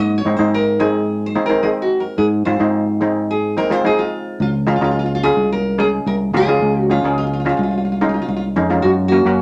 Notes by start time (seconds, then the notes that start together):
Already playing: G#2 D#5
0.18 C#5
0.25 G#2 G#3 C4 D#4
0.36 G#2 G#3 C4 D#4 C5
0.54 A#4
0.79 G#3 C4 D#4 G#4
1.26 C5
1.35 G#3 C4 D#4
1.46 G#3 C4 D#4 A#4
1.63 G#3 C4 D#4 G#4
1.82 F#4
2.00 A#4
2.18 G#2 G#4
2.45 G#2 G#3 C4 F4 C5
2.60 G#2 G#3 C4 D#4
3.01 G#3 C4 D#4
3.31 G#4
3.57 G#3 C4 D#4 A#4
3.70 G#3 C4 F4 C5
3.84 G#3 C4 D#4 G#4
3.99 F4
4.40 C#2 F4
4.67 G#3 C#4 F4
4.76 F4
4.81 C#2 G#3 C#4 F4
4.91 F4
4.99 F4
5.06 F4
5.15 F4
5.23 G#3 C#4 F4 G#4
5.37 C2
5.52 A#4
5.78 G#3 C#4 G#4
6.06 C2 A#4
6.34 C#2 G#3 C#4 F4 G#4
6.47 G#3 C#4 F4
6.62 C#2
6.90 G#3 C#4 F4
7.03 C#2 G#3 C#4 G#4
7.18 F4
7.27 F4
7.33 F4
7.40 F4
7.45 G#3 C#4 F4
7.57 C2 F4
7.63 F4
7.71 F4
7.78 F4
7.85 F4
7.92 F4
8.01 G#3 C#4 D#4 F4
8.09 F4
8.14 F4
8.22 F4
8.28 C2 F4
8.36 F4
8.56 F2 G#3 C#4 D#4
8.70 G#3 C#4 F4
8.82 F#2 F#4
9.08 A#3 C#4 F#4
9.25 F#2 A#3 C#4 F#4